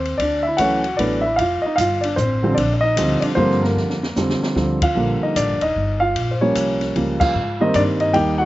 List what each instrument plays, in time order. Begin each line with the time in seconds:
Already playing: upright bass D#2, grand piano C4 C5
0.05 ride
0.18 upright bass D2, grand piano D5, kick, ride
0.22 grand piano D4
0.43 grand piano E5
0.47 grand piano E4
0.57 upright bass C#2, grand piano E3 F#3 A3 C#4 F#5, kick, hi-hat pedal, ride
0.61 grand piano F#4
0.84 ride
0.97 upright bass A1, grand piano E3 F#3 A3 B3 D4 D5, kick, ride
1.21 grand piano E5
1.26 grand piano E4
1.36 upright bass F1, grand piano F5, kick, ride
1.41 grand piano F4
1.62 grand piano D#5, muted upright bass stroke
1.66 grand piano D#4
1.76 upright bass G1, grand piano F5, kick, hi-hat pedal, ride
1.81 grand piano F4
2.01 grand piano D4 D5, ride
2.16 upright bass A1, grand piano C5, kick, hi-hat pedal
2.21 grand piano C4
2.43 grand piano D3 F3 G3 C4
2.55 upright bass A#1, grand piano D4 D5, kick, ride
2.74 grand piano D5
2.81 grand piano D#4 D#5
2.96 upright bass D2, grand piano D3 F3 G3 C4, kick, hi-hat pedal, ride
3.20 grand piano D4 D5, muted upright bass stroke, ride
3.35 upright bass G2, grand piano D3 F3 G3 A#3 C4 C5, kick
3.51 snare
3.63 grand piano A#3 A#4, snare
3.76 upright bass F2, snare
3.90 snare
4.03 snare
4.16 upright bass F2, grand piano D3 F3 G3 C4, snare, hi-hat pedal
4.30 snare
4.42 muted upright bass stroke, snare
4.55 upright bass D2, grand piano D3 F3 G3 C4, snare
4.82 grand piano F4 F5, kick, ride
4.95 upright bass A#1, grand piano D3 F3 G3 A#3
5.23 grand piano D#4 D#5
5.36 upright bass A1, grand piano D4 D5, kick, hi-hat pedal, ride
5.49 upright bass G1
5.61 upright bass D#1, grand piano D#4 D#5, ride
5.76 upright bass G1, kick
6.00 grand piano F4 F5
6.16 upright bass A#1, kick, ride
6.31 grand piano C5
6.41 grand piano F3 G3 A#3 C#4 C#5
6.55 upright bass C2, kick, hi-hat pedal, ride
6.81 snare, ride
6.96 upright bass C#2, grand piano C#3 F3 G3 A#3, kick, ride
7.20 grand piano F4 F5, kick, crash
7.35 upright bass G#2
7.61 grand piano D#3 G3 A#3 C4 D#4 D#5
7.74 upright bass G2, grand piano D4 D5, kick, hi-hat pedal, ride
8.00 grand piano D#4 D#5, ride
8.13 upright bass D#2, grand piano D#3 G3 A#3 D#4 G4 G5, kick, ride
8.38 grand piano F#4 F#5